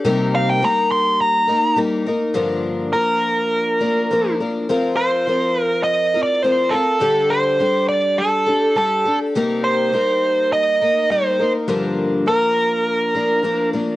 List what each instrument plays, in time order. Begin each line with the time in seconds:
0.05 twelve-string acoustic guitar C3 G3 A#3 D#4 A#4
0.35 lead electric guitar F5
0.50 lead electric guitar G5
0.62 twelve-string acoustic guitar G3 A#3 D#4 A#4, lead electric guitar A#5
0.91 lead electric guitar C6
1.21 lead electric guitar A#5
1.48 twelve-string acoustic guitar A#3 D#4 A#4
1.76 twelve-string acoustic guitar G3 A#3 D#4 A#4
2.06 twelve-string acoustic guitar A#3 D#4 A#4
2.34 twelve-string acoustic guitar G2 D3 F3 A#3 D4 A#4
2.93 twelve-string acoustic guitar F3 A#3 D4 A#4, lead electric guitar A#4
3.80 twelve-string acoustic guitar F3 A#3 D4 A#4
4.11 twelve-string acoustic guitar F3 A#3 D4 A#4
4.40 twelve-string acoustic guitar F3 A#3 D4 A#4
4.69 twelve-string acoustic guitar F3 C4 F4 A#4
4.96 lead electric guitar C5
5.27 twelve-string acoustic guitar F3 C4 F4 A#4
5.61 lead electric guitar A#4
5.84 lead electric guitar D#5
6.14 twelve-string acoustic guitar C4 F4 A#4
6.23 lead electric guitar D5
6.43 twelve-string acoustic guitar F3 C4 F4 A#4, lead electric guitar C5
6.70 twelve-string acoustic guitar F4 A#4, lead electric guitar A4
6.74 twelve-string acoustic guitar C4
7.00 twelve-string acoustic guitar D3 G3 D4 G4 A4
7.30 lead electric guitar C5
7.60 twelve-string acoustic guitar G3 D4 G4 A4
7.89 lead electric guitar D5
8.18 lead electric guitar A4
8.46 twelve-string acoustic guitar D4 G4 A4
8.76 twelve-string acoustic guitar G3 D4 G4 A4, lead electric guitar A4
9.05 twelve-string acoustic guitar D4 G4 A4
9.35 twelve-string acoustic guitar C3 G3 A#3 D#4 A#4
9.64 lead electric guitar C5
9.92 twelve-string acoustic guitar G3 A#3 D#4 A#4
10.53 lead electric guitar D#5
10.81 twelve-string acoustic guitar A#3 D#4 A#4
11.10 twelve-string acoustic guitar G3 A#3 D#4 A#4, lead electric guitar C5
11.39 twelve-string acoustic guitar A#3 D#4 A#4
11.68 twelve-string acoustic guitar G2 D3 F3 A#3 D4 A#4
12.26 twelve-string acoustic guitar F3 A#3 D4 A#4, lead electric guitar A#4
13.15 twelve-string acoustic guitar F3 A#3 D4 A#4
13.43 twelve-string acoustic guitar F3 A#3 D4 A#4
13.73 twelve-string acoustic guitar F3 A#3 D4 A#4